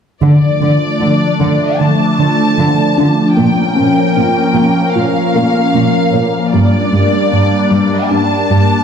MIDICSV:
0, 0, Header, 1, 5, 480
1, 0, Start_track
1, 0, Key_signature, -1, "minor"
1, 0, Tempo, 789474
1, 132, Time_signature, 4, 2, 24, 8
1, 5372, End_track
2, 0, Start_track
2, 0, Title_t, "Violin section"
2, 0, Program_c, 0, 48
2, 139, Note_on_c, 0, 74, 46
2, 1071, Note_off_c, 0, 74, 0
2, 1091, Note_on_c, 0, 81, 57
2, 2050, Note_on_c, 0, 79, 54
2, 2052, Note_off_c, 0, 81, 0
2, 2992, Note_off_c, 0, 79, 0
2, 3010, Note_on_c, 0, 77, 54
2, 3971, Note_off_c, 0, 77, 0
2, 3974, Note_on_c, 0, 74, 52
2, 4928, Note_on_c, 0, 81, 65
2, 4933, Note_off_c, 0, 74, 0
2, 5372, Note_off_c, 0, 81, 0
2, 5372, End_track
3, 0, Start_track
3, 0, Title_t, "Analog synth pad"
3, 0, Program_c, 1, 89
3, 135, Note_on_c, 1, 74, 56
3, 137, Note_on_c, 1, 53, 55
3, 139, Note_on_c, 1, 57, 53
3, 140, Note_on_c, 1, 62, 57
3, 2029, Note_off_c, 1, 74, 0
3, 2031, Note_off_c, 1, 57, 0
3, 2032, Note_off_c, 1, 62, 0
3, 2052, Note_on_c, 1, 58, 50
3, 2052, Note_on_c, 1, 61, 58
3, 2055, Note_on_c, 1, 70, 57
3, 3950, Note_off_c, 1, 53, 0
3, 3972, Note_off_c, 1, 61, 0
3, 3973, Note_off_c, 1, 70, 0
3, 3973, Note_on_c, 1, 74, 55
3, 3975, Note_on_c, 1, 55, 55
3, 3975, Note_on_c, 1, 62, 54
3, 5372, Note_off_c, 1, 55, 0
3, 5372, Note_off_c, 1, 58, 0
3, 5372, Note_off_c, 1, 62, 0
3, 5372, Note_off_c, 1, 74, 0
3, 5372, End_track
4, 0, Start_track
4, 0, Title_t, "Synth arpeggio sound"
4, 0, Program_c, 2, 84
4, 130, Note_on_c, 2, 50, 61
4, 274, Note_off_c, 2, 50, 0
4, 368, Note_on_c, 2, 53, 45
4, 513, Note_off_c, 2, 53, 0
4, 609, Note_on_c, 2, 53, 42
4, 754, Note_off_c, 2, 53, 0
4, 848, Note_on_c, 2, 50, 62
4, 993, Note_off_c, 2, 50, 0
4, 1093, Note_on_c, 2, 57, 44
4, 1237, Note_off_c, 2, 57, 0
4, 1338, Note_on_c, 2, 62, 40
4, 1480, Note_off_c, 2, 62, 0
4, 1569, Note_on_c, 2, 50, 54
4, 1714, Note_off_c, 2, 50, 0
4, 1810, Note_on_c, 2, 62, 48
4, 1955, Note_off_c, 2, 62, 0
4, 2049, Note_on_c, 2, 58, 63
4, 2194, Note_off_c, 2, 58, 0
4, 2288, Note_on_c, 2, 61, 44
4, 2433, Note_off_c, 2, 61, 0
4, 2530, Note_on_c, 2, 61, 44
4, 2675, Note_off_c, 2, 61, 0
4, 2771, Note_on_c, 2, 58, 63
4, 2915, Note_off_c, 2, 58, 0
4, 3014, Note_on_c, 2, 65, 44
4, 3158, Note_off_c, 2, 65, 0
4, 3254, Note_on_c, 2, 70, 42
4, 3398, Note_off_c, 2, 70, 0
4, 3496, Note_on_c, 2, 58, 63
4, 3639, Note_off_c, 2, 58, 0
4, 3733, Note_on_c, 2, 70, 50
4, 3877, Note_off_c, 2, 70, 0
4, 3974, Note_on_c, 2, 55, 57
4, 4117, Note_off_c, 2, 55, 0
4, 4217, Note_on_c, 2, 58, 47
4, 4360, Note_off_c, 2, 58, 0
4, 4453, Note_on_c, 2, 58, 49
4, 4596, Note_off_c, 2, 58, 0
4, 4689, Note_on_c, 2, 55, 57
4, 4834, Note_off_c, 2, 55, 0
4, 4932, Note_on_c, 2, 62, 48
4, 5076, Note_off_c, 2, 62, 0
4, 5172, Note_on_c, 2, 67, 49
4, 5316, Note_off_c, 2, 67, 0
4, 5372, End_track
5, 0, Start_track
5, 0, Title_t, "Cello section"
5, 0, Program_c, 3, 48
5, 132, Note_on_c, 3, 50, 37
5, 181, Note_off_c, 3, 50, 0
5, 370, Note_on_c, 3, 50, 27
5, 419, Note_off_c, 3, 50, 0
5, 613, Note_on_c, 3, 50, 28
5, 662, Note_off_c, 3, 50, 0
5, 855, Note_on_c, 3, 50, 37
5, 903, Note_off_c, 3, 50, 0
5, 1096, Note_on_c, 3, 50, 24
5, 1145, Note_off_c, 3, 50, 0
5, 1334, Note_on_c, 3, 50, 26
5, 1383, Note_off_c, 3, 50, 0
5, 1574, Note_on_c, 3, 50, 38
5, 1622, Note_off_c, 3, 50, 0
5, 1817, Note_on_c, 3, 50, 31
5, 1866, Note_off_c, 3, 50, 0
5, 2060, Note_on_c, 3, 46, 37
5, 2108, Note_off_c, 3, 46, 0
5, 2300, Note_on_c, 3, 46, 25
5, 2349, Note_off_c, 3, 46, 0
5, 2542, Note_on_c, 3, 46, 27
5, 2591, Note_off_c, 3, 46, 0
5, 2772, Note_on_c, 3, 46, 39
5, 2821, Note_off_c, 3, 46, 0
5, 3021, Note_on_c, 3, 46, 27
5, 3070, Note_off_c, 3, 46, 0
5, 3253, Note_on_c, 3, 46, 28
5, 3302, Note_off_c, 3, 46, 0
5, 3498, Note_on_c, 3, 46, 36
5, 3547, Note_off_c, 3, 46, 0
5, 3734, Note_on_c, 3, 46, 29
5, 3783, Note_off_c, 3, 46, 0
5, 3975, Note_on_c, 3, 43, 37
5, 4024, Note_off_c, 3, 43, 0
5, 4216, Note_on_c, 3, 43, 30
5, 4265, Note_off_c, 3, 43, 0
5, 4456, Note_on_c, 3, 43, 32
5, 4505, Note_off_c, 3, 43, 0
5, 4698, Note_on_c, 3, 43, 43
5, 4746, Note_off_c, 3, 43, 0
5, 4936, Note_on_c, 3, 43, 28
5, 4985, Note_off_c, 3, 43, 0
5, 5173, Note_on_c, 3, 43, 32
5, 5221, Note_off_c, 3, 43, 0
5, 5372, End_track
0, 0, End_of_file